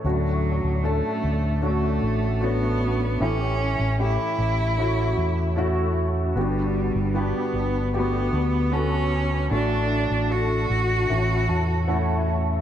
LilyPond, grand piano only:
<<
  \new Staff \with { instrumentName = "Grand piano" } { \time 4/4 \key d \major \tempo 4 = 76 << { a'16 r2. r8. | r1 | r1 | r2 r8 a''8 fis''8 e''8 | } \\ { <a cis' d' fis'>4 <a cis' d' a'>4 <a cis' d' fis'>4 <a cis' d' fis'>4 | <a cis' e' g'>4 <a cis' e' g'>4 <a cis' e' fis'>4 <a cis' e' fis'>4 | <b d' fis' g'>4 <b d' fis' g'>4 <a b d' fis' g'>4 <d b fis' a'>4 | <a d' fis' a'>4 <a d' fis' a'>4 <a cis' e' a'>4 <a cis' e' a'>4 | } >> }
  \new Staff \with { instrumentName = "Grand piano" } { \clef bass \time 4/4 \key d \major a,4. r2 r8 | <a, e>4. r2 r8 | <g, d>4. r2 r8 | a,4. r8 <a, e>4. r8 | }
>>